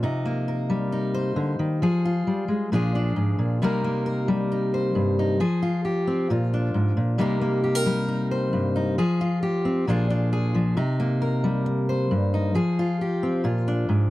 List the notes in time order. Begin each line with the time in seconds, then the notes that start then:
Already playing: F3
0.03 C3 D#4
0.26 A#3
0.48 A#4
0.70 G3
0.92 D#4
1.14 C5
1.36 D3
1.59 D#3
1.82 F3 G#4
2.05 F4
2.27 G3
2.48 G#3
2.72 A#2 F3 D4 F4 G#4
2.95 D4
3.16 G#2
3.39 A#2
3.62 C3 G3 A#3 D#4 A#4
3.84 A#3
4.06 A#4
4.28 G3
4.52 D#4
4.74 C5
4.95 G2
5.19 D#4
5.40 F3 G#4
5.62 F4
5.85 G4
6.07 C4
6.30 A#2 F4
6.54 D4
6.74 G#2
6.97 A#2
7.18 C3 G3 A#3 D#4 A#4
7.41 A#3
7.64 G4
7.75 A#4
7.86 G3
8.08 D#4
8.31 C5
8.53 G2
8.76 D#4
8.98 F3 G#4
9.21 F4
9.43 G4
9.65 C4
9.87 A#2 F3 D4 F4 G#4
10.10 D4
10.33 G#4
10.55 F3
10.77 C3 D#4
11.00 A#3
11.22 A#4
11.44 G3
11.66 muted steel-string acoustic guitar stroke
11.89 C5
12.11 G2
12.34 D#4
12.55 F3 G#4
12.79 F4
13.01 G4
13.23 C4
13.44 A#2 F4
13.68 D4
13.89 G#2